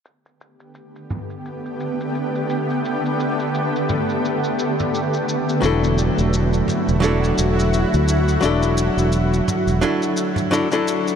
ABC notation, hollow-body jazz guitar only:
X:1
M:4/4
L:1/16
Q:"Swing 16ths" 1/4=86
K:Em
V:1 name="Hollow-body jazz guitar"
z16 | z16 | [F,DEA]8 [F,DEA]8 | [F,DEA]8 [F,DEA]4 [F,DEA] [F,DEA]3 |]